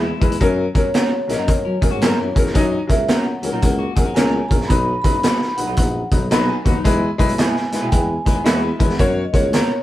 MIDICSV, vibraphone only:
0, 0, Header, 1, 2, 480
1, 0, Start_track
1, 0, Tempo, 536193
1, 367, Time_signature, 4, 2, 24, 8
1, 8799, End_track
2, 0, Start_track
2, 0, Title_t, "Vibraphone"
2, 0, Program_c, 0, 11
2, 693, Note_on_c, 0, 73, 100
2, 1131, Note_off_c, 0, 73, 0
2, 1164, Note_on_c, 0, 75, 102
2, 1332, Note_on_c, 0, 73, 80
2, 1338, Note_off_c, 0, 75, 0
2, 2081, Note_off_c, 0, 73, 0
2, 2587, Note_on_c, 0, 76, 79
2, 2755, Note_on_c, 0, 78, 82
2, 2771, Note_off_c, 0, 76, 0
2, 3221, Note_off_c, 0, 78, 0
2, 3232, Note_on_c, 0, 78, 89
2, 3687, Note_off_c, 0, 78, 0
2, 3707, Note_on_c, 0, 80, 99
2, 4015, Note_on_c, 0, 82, 98
2, 4035, Note_off_c, 0, 80, 0
2, 4184, Note_on_c, 0, 83, 108
2, 4205, Note_off_c, 0, 82, 0
2, 4479, Note_off_c, 0, 83, 0
2, 4490, Note_on_c, 0, 83, 107
2, 4986, Note_on_c, 0, 78, 86
2, 4999, Note_off_c, 0, 83, 0
2, 5438, Note_off_c, 0, 78, 0
2, 6610, Note_on_c, 0, 80, 98
2, 7043, Note_on_c, 0, 79, 74
2, 7058, Note_off_c, 0, 80, 0
2, 7089, Note_off_c, 0, 79, 0
2, 7092, Note_on_c, 0, 80, 98
2, 7537, Note_off_c, 0, 80, 0
2, 8276, Note_on_c, 0, 75, 72
2, 8355, Note_off_c, 0, 75, 0
2, 8358, Note_on_c, 0, 73, 99
2, 8799, Note_off_c, 0, 73, 0
2, 8799, End_track
0, 0, End_of_file